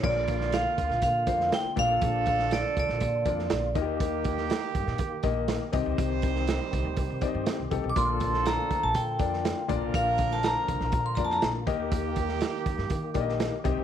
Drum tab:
CC |x---------------|----------------|----------------|----------------|
HH |--x-x-x-x-x-x-x-|x-x-x-x-x-x-x-x-|x-x-x-x-x-x-x-x-|x-x-x-x-x-x-x-x-|
SD |---oo--o---oo---|---oo--o---oo---|---oo--o----o---|---oo-------o---|
BD |o-o---o-o-o---o-|o-o---o-o-o---o-|o-o---o-o-o---o-|o-o---o-o-o---o-|

CC |----------------|----------------|----------------|
HH |x-x-x-x-x-x-x-x-|x-x-x-x-x-x-x-x-|x-x-x-x-x-x-x-x-|
SD |---oo------oo---|---oo--o---oo---|---oo--o---oo---|
BD |o-o---o-o-o---o-|o-o---o-o-o---o-|o-o---o-o-o---o-|